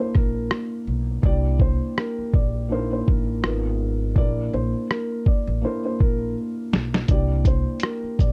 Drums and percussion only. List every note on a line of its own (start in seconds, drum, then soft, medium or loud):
0.15 kick medium
0.15 cross-stick soft
0.51 cross-stick loud
1.23 kick loud
1.60 kick medium
1.98 cross-stick loud
2.34 kick medium
3.08 kick medium
3.44 cross-stick loud
4.16 kick loud
4.91 cross-stick loud
5.26 kick medium
6.00 kick medium
6.73 snare medium
6.94 snare medium
7.08 kick loud
7.08 closed hi-hat medium
7.45 kick medium
7.45 closed hi-hat soft
7.45 shaker soft
7.80 cross-stick loud
7.80 closed hi-hat medium
8.19 kick medium
8.19 shaker medium